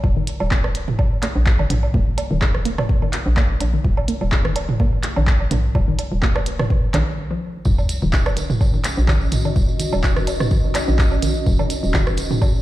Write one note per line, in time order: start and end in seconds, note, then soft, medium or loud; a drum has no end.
0.04 0.13 D#1 loud
0.04 kick loud
0.04 low woodblock soft
0.17 0.24 D#3 medium
0.27 closed hi-hat medium
0.40 0.95 D#1 medium
0.40 low woodblock medium
0.51 0.57 A#3 medium
0.51 kick loud
0.51 clap medium
0.64 cross-stick medium
0.64 low woodblock soft
0.75 closed hi-hat medium
0.88 0.96 D#3 medium
0.88 mid tom medium
0.99 kick loud
0.99 low woodblock medium
1.23 1.29 A#3 medium
1.23 clap medium
1.23 closed hi-hat medium
1.23 low woodblock soft
1.35 1.66 A#1 medium
1.46 kick loud
1.46 clap medium
1.59 1.67 D#3 medium
1.59 low woodblock medium
1.70 1.89 A#1 medium
1.70 closed hi-hat medium
1.70 mid tom medium
1.83 low woodblock soft
1.94 2.04 D#1 loud
1.94 2.00 A#3 medium
1.94 kick loud
2.18 closed hi-hat medium
2.18 low woodblock medium
2.31 2.85 D#1 medium
2.31 2.39 D#3 medium
2.42 kick loud
2.42 clap medium
2.42 low woodblock soft
2.55 cross-stick medium
2.65 2.72 A#3 medium
2.65 closed hi-hat medium
2.78 cross-stick medium
2.78 mid tom medium
2.78 low woodblock medium
2.89 kick loud
3.02 3.10 D#3 medium
3.02 low woodblock soft
3.13 clap medium
3.13 closed hi-hat medium
3.26 3.56 A#1 medium
3.37 3.43 A#3 medium
3.37 kick loud
3.37 clap medium
3.37 low woodblock medium
3.61 3.79 A#1 medium
3.61 closed hi-hat medium
3.61 low woodblock soft
3.74 3.81 D#3 medium
3.84 3.94 D#1 loud
3.84 kick loud
3.97 low woodblock medium
4.08 4.14 A#3 medium
4.08 closed hi-hat medium
4.21 4.76 D#1 medium
4.21 low woodblock soft
4.32 kick loud
4.32 clap medium
4.45 4.53 D#3 medium
4.45 cross-stick medium
4.56 closed hi-hat medium
4.56 low woodblock medium
4.69 mid tom medium
4.80 4.86 A#3 medium
4.80 kick loud
4.80 low woodblock soft
5.03 clap medium
5.03 closed hi-hat medium
5.16 5.47 A#1 medium
5.16 5.24 D#3 medium
5.16 low woodblock medium
5.27 kick loud
5.27 clap medium
5.40 low woodblock soft
5.51 5.70 A#1 medium
5.51 5.57 A#3 medium
5.51 closed hi-hat medium
5.51 mid tom medium
5.75 5.85 D#1 loud
5.75 kick loud
5.75 low woodblock medium
5.88 5.96 D#3 medium
5.99 closed hi-hat medium
5.99 low woodblock soft
6.12 6.66 D#1 medium
6.22 6.29 A#3 medium
6.22 kick loud
6.22 clap loud
6.36 cross-stick medium
6.36 low woodblock medium
6.46 closed hi-hat medium
6.59 6.67 D#3 medium
6.59 cross-stick medium
6.59 mid tom medium
6.59 low woodblock soft
6.70 kick loud
6.94 7.04 A#1 medium
6.94 7.03 D#3 loud
6.94 clap medium
6.94 closed hi-hat medium
6.94 low woodblock medium
7.31 7.34 F3 medium
7.65 7.75 D#1 loud
7.65 7.75 D#3 medium
7.65 12.62 C#4 medium
7.65 kick loud
7.65 tambourine soft
7.65 sub drop medium
7.78 tambourine soft
7.78 low woodblock soft
7.89 closed hi-hat medium
7.89 tambourine loud
7.95 12.62 F#4 loud
8.02 8.57 D#1 medium
8.02 8.05 D#3 medium
8.02 11.88 D#5 medium
8.02 tambourine soft
8.12 kick loud
8.12 clap loud
8.12 tambourine medium
8.26 cross-stick medium
8.26 tambourine soft
8.26 low woodblock medium
8.37 8.46 D#3 medium
8.37 closed hi-hat medium
8.37 tambourine medium
8.50 mid tom medium
8.50 tambourine soft
8.61 kick loud
8.61 tambourine medium
8.61 low woodblock soft
8.74 8.77 D#3 medium
8.74 tambourine soft
8.84 clap medium
8.84 closed hi-hat medium
8.84 tambourine medium
8.97 9.52 A#1 medium
8.97 tambourine soft
9.08 9.17 D#3 medium
9.08 kick loud
9.08 clap medium
9.08 tambourine medium
9.08 low woodblock medium
9.21 tambourine soft
9.32 closed hi-hat loud
9.32 mid tom medium
9.32 tambourine medium
9.45 9.48 D#3 medium
9.45 tambourine soft
9.45 low woodblock soft
9.56 9.66 D#1 loud
9.56 kick loud
9.56 tambourine medium
9.68 tambourine soft
9.79 9.89 D#3 medium
9.79 closed hi-hat loud
9.79 tambourine loud
9.93 10.47 D#1 medium
9.93 tambourine soft
9.93 low woodblock medium
10.03 kick loud
10.03 clap medium
10.03 tambourine medium
10.16 10.20 D#3 medium
10.16 cross-stick medium
10.16 tambourine soft
10.27 closed hi-hat medium
10.27 tambourine medium
10.27 low woodblock soft
10.40 cross-stick medium
10.40 mid tom medium
10.40 tambourine soft
10.51 10.60 D#3 medium
10.51 kick loud
10.51 tambourine medium
10.64 tambourine soft
10.75 clap medium
10.75 closed hi-hat loud
10.75 tambourine loud
10.75 low woodblock medium
10.88 11.42 A#1 medium
10.88 10.91 D#3 medium
10.88 tambourine soft
10.99 kick loud
10.99 clap loud
10.99 tambourine medium
11.12 tambourine soft
11.12 low woodblock soft
11.22 11.32 D#3 medium
11.22 closed hi-hat loud
11.22 tambourine loud
11.35 tambourine soft
11.46 11.56 D#1 loud
11.46 kick loud
11.46 tambourine medium
11.59 11.62 D#3 medium
11.59 tambourine soft
11.59 low woodblock medium
11.70 closed hi-hat loud
11.70 tambourine medium
11.83 12.37 D#1 medium
11.83 12.62 G#4 medium
11.83 tambourine soft
11.94 12.03 D#3 medium
11.94 kick loud
11.94 clap loud
11.94 tambourine medium
11.94 low woodblock soft
12.07 cross-stick medium
12.07 tambourine soft
12.17 closed hi-hat loud
12.17 tambourine medium
12.31 12.34 D#3 medium
12.31 mid tom medium
12.31 tambourine soft
12.42 kick loud
12.42 tambourine medium
12.42 low woodblock medium
12.55 tambourine soft